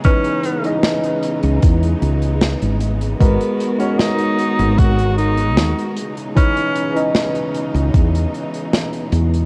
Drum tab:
HH |xxxxxxxxxxxxxxxx|xxxxxxxxxxxxxxxx|xxxxxxxxxxxxxxxx|
SD |----o-------o---|----o-------o---|----o-------o---|
BD |o-------o-------|o-------o-------|o-------o-------|